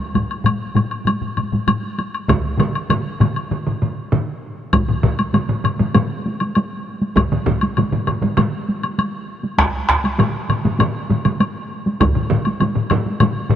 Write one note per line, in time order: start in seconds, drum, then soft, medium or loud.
0.14 taiko low-mid medium
0.14 taiko high medium
0.14 high woodblock soft
0.30 taiko high soft
0.30 high woodblock soft
0.44 taiko low-mid medium
0.44 taiko high medium
0.44 high woodblock soft
0.61 taiko high soft
0.75 taiko low-mid medium
0.75 taiko high medium
0.75 high woodblock soft
0.91 taiko high soft
0.91 high woodblock soft
1.06 taiko low-mid medium
1.06 taiko high medium
1.06 high woodblock soft
1.21 taiko low-mid medium
1.21 taiko high soft
1.37 taiko low-mid medium
1.37 taiko high soft
1.37 high woodblock soft
1.52 taiko low-mid medium
1.52 taiko high soft
1.67 taiko low-mid medium
1.67 taiko high medium
1.67 high woodblock soft
1.84 taiko high soft
1.98 taiko high soft
1.98 high woodblock soft
2.14 taiko high soft
2.14 high woodblock soft
2.28 taiko medium
2.28 taiko low-mid medium
2.28 taiko mid loud
2.28 taiko high medium
2.28 high woodblock soft
2.45 taiko high soft
2.58 taiko low-mid medium
2.58 taiko mid loud
2.58 taiko high medium
2.58 high woodblock soft
2.75 taiko high soft
2.75 high woodblock soft
2.90 taiko low-mid medium
2.90 taiko mid medium
2.90 taiko high medium
2.90 high woodblock soft
3.06 taiko high soft
3.20 taiko low-mid medium
3.20 taiko mid medium
3.20 taiko high soft
3.20 high woodblock soft
3.36 taiko high soft
3.36 high woodblock soft
3.51 taiko low-mid medium
3.51 taiko mid medium
3.67 taiko low-mid medium
3.67 taiko mid medium
3.82 taiko low-mid medium
3.82 taiko mid medium
4.12 taiko low-mid medium
4.12 taiko mid loud
4.73 taiko loud
4.73 taiko low-mid medium
4.73 taiko mid medium
4.73 taiko high medium
4.73 high woodblock medium
4.88 taiko low-mid medium
4.88 taiko mid medium
5.03 taiko medium
5.03 taiko low-mid medium
5.03 taiko mid loud
5.19 taiko high medium
5.19 high woodblock soft
5.33 taiko low-mid medium
5.33 taiko mid medium
5.33 taiko high medium
5.33 high woodblock soft
5.49 taiko low-mid medium
5.49 taiko mid medium
5.64 taiko low-mid medium
5.64 taiko mid medium
5.64 high woodblock soft
5.79 taiko low-mid medium
5.79 taiko mid medium
5.79 taiko high medium
5.95 taiko low-mid loud
5.95 taiko mid medium
5.95 taiko high medium
5.95 high woodblock soft
6.26 taiko high medium
6.40 taiko high soft
6.40 high woodblock soft
6.55 taiko high medium
6.55 high woodblock soft
7.02 taiko high medium
7.16 taiko medium
7.16 taiko low-mid medium
7.16 taiko mid medium
7.16 taiko high medium
7.16 high woodblock soft
7.32 taiko low-mid medium
7.32 taiko mid medium
7.46 taiko medium
7.46 taiko low-mid medium
7.46 taiko mid loud
7.61 taiko high medium
7.61 high woodblock soft
7.77 taiko low-mid medium
7.77 taiko mid medium
7.77 taiko high medium
7.77 high woodblock soft
7.92 taiko low-mid medium
7.92 taiko mid medium
8.07 taiko low-mid medium
8.07 taiko mid medium
8.07 high woodblock soft
8.22 taiko low-mid medium
8.22 taiko mid medium
8.22 taiko high medium
8.37 taiko low-mid medium
8.37 taiko mid loud
8.37 taiko high medium
8.37 high woodblock soft
8.69 taiko high soft
8.83 taiko high soft
8.83 high woodblock soft
8.98 taiko high medium
8.98 high woodblock soft
9.43 taiko high soft
9.58 taiko rim medium
9.58 taiko loud
9.58 taiko high medium
9.58 high woodblock medium
9.89 taiko rim medium
9.89 taiko medium
10.04 taiko high medium
10.04 high woodblock soft
10.18 taiko low-mid medium
10.18 taiko mid loud
10.18 taiko high medium
10.18 high woodblock soft
10.49 taiko low-mid medium
10.49 taiko mid medium
10.49 high woodblock soft
10.65 taiko low-mid medium
10.65 taiko mid medium
10.65 taiko high medium
10.79 taiko low-mid loud
10.79 taiko mid medium
10.79 taiko high medium
10.79 high woodblock medium
11.10 taiko low-mid medium
11.10 taiko mid medium
11.10 taiko high medium
11.25 taiko low-mid medium
11.25 taiko mid medium
11.25 taiko high soft
11.25 high woodblock soft
11.40 taiko high medium
11.40 high woodblock soft
11.86 taiko high medium
12.00 taiko loud
12.00 taiko low-mid medium
12.00 taiko mid medium
12.00 taiko high medium
12.00 high woodblock medium
12.15 taiko low-mid medium
12.15 taiko mid medium
12.30 taiko low-mid medium
12.30 taiko mid loud
12.45 taiko high medium
12.45 high woodblock soft
12.60 taiko low-mid medium
12.60 taiko mid medium
12.60 taiko high medium
12.60 high woodblock soft
12.75 taiko low-mid medium
12.75 taiko mid medium
12.90 taiko low-mid loud
12.90 taiko mid loud
12.90 high woodblock soft
13.06 taiko high medium
13.20 taiko low-mid loud
13.20 taiko mid medium
13.20 taiko high medium
13.20 high woodblock medium
13.50 taiko low-mid medium
13.50 taiko mid medium